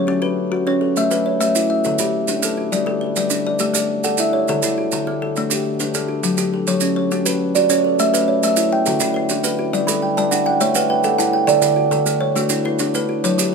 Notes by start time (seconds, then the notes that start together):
Already playing: C#5
0.07 C#4 F#4
0.22 F#4 B4
0.52 F#4
0.67 C#4 C#5
0.81 A4
0.97 A3 E5, maracas
1.11 A3 B4, maracas
1.26 C#5
1.41 A3 E5, maracas
1.55 E4, maracas
1.70 E5
1.84 D3 A4, maracas
1.99 D3 G4, maracas
2.28 D4 B4, maracas
2.42 A3 A4, maracas
2.57 F#4
2.72 G3 D5, maracas
2.86 G3 A4
3.01 B4
3.16 G3 D5, maracas
3.30 D4, maracas
3.47 D5
3.59 A3 G4, maracas
3.74 A3 D5, maracas
4.04 A4 F#5, maracas
4.17 E4 E5, maracas
4.33 C#5
4.48 D3 A4, maracas
4.62 D3 E4, maracas
4.78 F#4
4.92 D3, maracas
5.07 A3
5.22 A4
5.36 A3 D4, maracas
5.50 D4 G4, maracas
5.80 D4 B4, maracas
5.94 A3 A4, maracas
6.08 F#4
6.23 F#3, maracas
6.38 F#3 G4, maracas
6.54 A4
6.67 F#3 C#5, maracas
6.80 C#4, maracas
6.96 C#5
7.11 C#4 F#4, maracas
7.26 F#4 B4, maracas
7.55 F#4 D5, maracas
7.70 C#4 C#5, maracas
7.85 A4
7.99 A3 E5, maracas
8.14 A3 B4, maracas
8.28 C#5
8.43 A3 E5, maracas
8.56 E4, maracas
8.73 G5
8.86 D3 F#4 A4, maracas
9.00 D3 E4, maracas
9.14 E4 B4
9.29 D4 E4, maracas
9.44 A3 B4, maracas
9.59 F#4
9.73 G3 D5, maracas
9.87 G3 A4 B5, maracas
10.02 G5
10.17 G3 D5 A5, maracas
10.31 D4 F#5, maracas
10.46 F#5 G5
10.61 A3 C#5 E5, maracas
10.75 A3 B4 F#5, maracas
10.90 B4 G5
11.04 A4 F#5, maracas
11.18 E4 F#5 A5, maracas
11.33 G5
11.47 D3 A4 D5, maracas
11.62 D3 E4, maracas
11.76 F#4
11.91 D3 A4, maracas
12.06 A3, maracas
12.21 C#5
12.35 A3 D4 F#4, maracas
12.49 D4 E4, maracas
12.65 E4 B4
12.79 D4 E4, maracas
12.94 A3 B4, maracas
13.09 F#4
13.24 F#3 C#5, maracas
13.38 F#3 G4, maracas